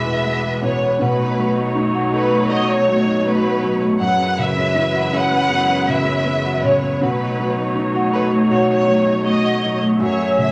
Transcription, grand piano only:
0.00 0.97 E2 medium
0.00 0.62 B2 soft
0.00 0.21 E3 soft
0.00 0.23 G#3 soft
0.00 0.59 B3 soft
0.24 0.98 G#3 soft
0.62 0.98 B2 soft
0.99 3.96 B2 soft
1.37 2.84 F#3 soft
1.75 3.21 D#4 soft
2.13 3.59 A4 soft
2.51 3.24 F#4 soft
2.88 3.62 F#3 soft
3.26 3.98 F#4 soft
3.63 3.99 F#3 soft
4.00 6.96 F#2 medium
4.38 5.84 C#3 soft
4.75 6.21 E3 soft
5.12 6.58 C#4 soft
5.49 6.24 B3 soft
5.88 6.62 C#3 soft
6.26 6.98 B3 soft
6.64 7.00 C#3 soft
7.01 9.97 B2 medium
7.38 8.84 F#3 soft
7.75 9.21 D#4 soft
8.12 9.59 A4 soft
8.50 9.23 F#4 soft
8.88 9.62 F#3 soft
9.25 9.98 F#4 soft
9.63 9.99 F#3 soft
10.00 10.52 F#2 medium
10.38 10.52 C#3 soft

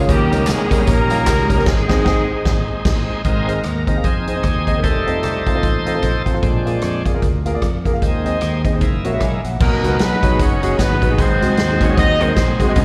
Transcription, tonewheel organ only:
0.09 1.64 D#3 medium
0.09 1.64 A#3 medium
0.09 1.64 C#4 medium
0.09 1.64 D#4 medium
0.09 1.64 A#4 medium
1.67 3.22 G#3 medium
1.67 3.22 C4 medium
1.67 3.22 D#4 medium
3.25 3.53 G#3 soft
3.25 3.53 C4 soft
3.25 3.54 D#4 medium
3.25 4.07 A#4 medium
4.05 4.80 C4 medium
4.05 4.80 D#4 medium
4.05 4.80 G#4 medium
4.83 5.43 G3 medium
4.83 5.43 A3 soft
4.83 6.23 D#4 medium
4.83 6.22 A4 medium
4.83 6.22 C5 medium
6.42 7.02 G#3 soft
6.42 7.03 C4 soft
6.42 7.03 D4 medium
8.02 8.62 G#3 soft
8.02 8.62 C4 soft
8.02 8.62 D#4 soft
8.81 9.41 G#3 soft
8.81 9.41 A#3 soft
8.81 9.41 E4 soft
9.61 11.15 F#3 medium
9.61 11.15 B3 medium
9.61 11.16 D#4 medium
11.17 12.72 F#3 medium
11.17 12.73 G#3 medium
11.17 12.73 C4 medium
11.17 12.72 D#4 medium
11.17 12.73 G#4 medium
12.75 12.85 F3 medium
12.75 12.85 G#3 medium
12.75 12.85 B3 medium
12.75 12.85 C#4 medium
12.75 12.85 G#4 medium

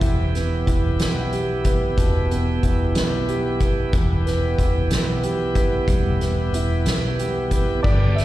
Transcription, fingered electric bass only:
0.01 0.63 E1 medium
0.67 0.98 E1 medium
1.00 1.94 B1 medium
1.98 2.59 E1 loud
2.63 2.94 E1 medium
2.96 3.89 B1 medium
3.93 4.54 E1 loud
4.59 4.89 E1 medium
4.91 5.84 B1 medium
5.88 6.49 E1 loud
6.53 6.84 E1 medium
6.85 7.80 B1 medium
7.84 8.25 G1 loud

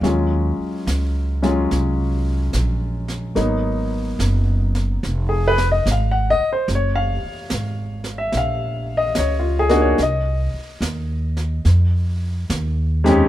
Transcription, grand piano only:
0.03 1.31 F#3 medium
0.03 1.31 G#3 medium
0.03 1.31 C#4 soft
0.03 1.31 F4 medium
1.42 1.68 F#3 medium
1.42 1.68 G#3 medium
1.42 1.68 C#4 medium
1.42 1.68 F4 medium
3.35 3.85 F#3 medium
3.35 3.85 A#3 medium
3.35 3.85 B3 medium
3.35 3.86 D#4 medium
5.29 5.56 G#4 medium
5.48 5.66 B4 medium
5.72 5.85 D#5 medium
5.92 6.15 F5 medium
6.11 6.38 F#5 medium
6.30 6.49 D#5 loud
6.53 6.67 C5 medium
6.75 6.98 C#5 medium
6.96 7.12 F5 medium
8.18 8.32 E5 medium
8.37 8.99 F5 medium
8.97 9.13 D#5 medium
9.19 9.43 C#5 medium
9.39 9.67 F4 medium
9.59 9.78 G#4 medium
9.69 9.95 A#3 medium
9.69 9.95 D4 medium
9.69 9.95 D#4 medium
9.69 9.95 F#4 medium
9.82 9.96 C#5 medium
10.02 12.48 D#5 medium
13.04 13.28 F2 medium
13.04 13.28 G#3 medium
13.04 13.28 C4 medium
13.04 13.28 D#4 medium
13.04 13.28 G4 medium
13.09 13.28 C#4 medium

